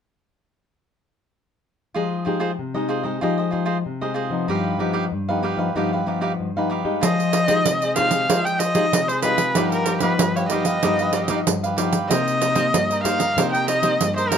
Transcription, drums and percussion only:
7.03 pandeiro medium
7.20 pandeiro soft
7.33 pandeiro medium
7.48 pandeiro soft
7.66 pandeiro medium
7.82 pandeiro soft
7.96 pandeiro medium
8.11 pandeiro medium
8.30 pandeiro medium
8.46 pandeiro soft
8.60 pandeiro medium
8.75 pandeiro soft
8.93 pandeiro medium
9.09 pandeiro soft
9.22 pandeiro medium
9.38 pandeiro soft
9.55 pandeiro medium
9.72 pandeiro soft
9.86 pandeiro medium
10.00 pandeiro soft
10.19 pandeiro medium
10.37 pandeiro soft
10.50 pandeiro medium
10.65 pandeiro soft
10.83 pandeiro medium
10.99 pandeiro soft
11.13 pandeiro medium
11.28 pandeiro soft
11.47 pandeiro medium
11.64 pandeiro soft
11.78 pandeiro medium
11.93 pandeiro medium
12.11 pandeiro medium
12.28 pandeiro soft
12.42 pandeiro medium
12.56 pandeiro soft
12.74 pandeiro medium
12.91 pandeiro soft
13.05 pandeiro medium
13.20 pandeiro medium
13.38 pandeiro medium
13.54 pandeiro soft
13.68 pandeiro medium
13.83 pandeiro soft
14.01 pandeiro medium
14.18 pandeiro soft
14.32 pandeiro medium

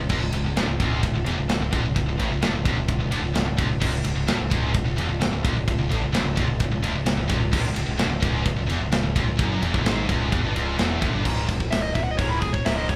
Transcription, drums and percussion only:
0.09 kick loud
0.09 crash loud
0.33 ride medium
0.57 snare loud
0.57 ride loud
0.80 kick loud
0.80 ride medium
1.03 kick medium
1.03 ride loud
1.26 ride medium
1.49 snare loud
1.49 ride loud
1.72 kick loud
1.72 ride medium
1.96 kick medium
1.96 ride medium
2.19 ride medium
2.42 snare loud
2.42 ride loud
2.65 kick loud
2.65 ride medium
2.88 kick medium
2.88 ride loud
3.12 ride medium
3.35 snare loud
3.35 ride loud
3.58 kick loud
3.58 ride medium
3.82 kick loud
3.82 crash loud
4.04 ride medium
4.28 snare loud
4.28 ride loud
4.51 kick loud
4.51 ride medium
4.74 kick medium
4.74 ride loud
4.98 ride medium
5.21 snare loud
5.21 ride medium
5.45 kick loud
5.45 ride medium
5.68 kick medium
5.68 ride loud
5.91 ride medium
6.14 snare loud
6.14 ride loud
6.37 kick loud
6.37 ride medium
6.60 kick medium
6.60 ride loud
6.84 ride medium
7.06 snare loud
7.06 ride loud
7.29 kick loud
7.29 ride medium
7.53 kick loud
7.53 crash loud
7.76 ride medium
7.99 snare loud
7.99 ride loud
8.22 kick loud
8.22 ride medium
8.45 kick medium
8.45 ride loud
8.70 ride medium
8.92 snare loud
8.92 ride loud
9.16 kick loud
9.16 ride medium
9.39 kick loud
9.39 ride loud
9.62 ride medium
9.74 kick loud
9.86 snare loud
9.86 ride loud
10.09 kick loud
10.09 ride medium
10.32 kick loud
10.32 ride medium
10.56 ride medium
10.79 snare loud
10.79 ride loud
11.02 kick loud
11.02 ride medium
11.25 kick loud
11.25 crash loud
11.25 crash medium
11.49 kick medium
11.49 crash medium
11.60 kick medium
11.72 snare loud
11.72 crash medium
11.95 kick medium
11.95 crash medium
12.19 kick loud
12.19 crash medium
12.41 kick medium
12.41 crash medium
12.54 kick medium
12.66 snare loud
12.66 crash medium
12.89 kick medium
12.89 crash medium

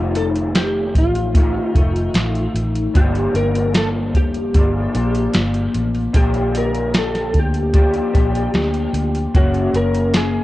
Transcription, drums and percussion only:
0.15 closed hi-hat medium
0.36 closed hi-hat soft
0.55 snare loud
0.55 closed hi-hat medium
0.95 kick medium
0.95 closed hi-hat medium
1.15 closed hi-hat soft
1.35 kick loud
1.35 closed hi-hat medium
1.75 kick medium
1.75 closed hi-hat medium
1.96 closed hi-hat soft
2.14 snare medium
2.14 closed hi-hat medium
2.35 closed hi-hat soft
2.56 closed hi-hat medium
2.75 closed hi-hat medium
2.95 kick loud
2.95 closed hi-hat medium
3.15 closed hi-hat soft
3.35 closed hi-hat medium
3.55 closed hi-hat soft
3.75 snare loud
3.75 closed hi-hat medium
4.15 kick medium
4.15 closed hi-hat medium
4.34 closed hi-hat soft
4.54 kick loud
4.54 closed hi-hat medium
4.95 closed hi-hat medium
5.15 closed hi-hat soft
5.34 snare loud
5.34 closed hi-hat medium
5.54 closed hi-hat soft
5.74 closed hi-hat medium
5.95 closed hi-hat medium
6.14 kick medium
6.14 closed hi-hat medium
6.34 closed hi-hat soft
6.55 closed hi-hat medium
6.75 closed hi-hat soft
6.94 snare loud
6.94 closed hi-hat medium
7.15 snare soft
7.15 closed hi-hat soft
7.34 kick medium
7.34 closed hi-hat medium
7.54 closed hi-hat soft
7.74 kick medium
7.74 closed hi-hat medium
7.94 closed hi-hat soft
8.15 kick medium
8.15 closed hi-hat medium
8.35 closed hi-hat soft
8.54 snare loud
8.54 closed hi-hat medium
8.74 closed hi-hat soft
8.94 closed hi-hat medium
9.15 closed hi-hat soft
9.35 kick loud
9.35 closed hi-hat medium
9.54 closed hi-hat soft
9.74 closed hi-hat medium
9.95 closed hi-hat soft
10.14 snare loud
10.14 closed hi-hat medium

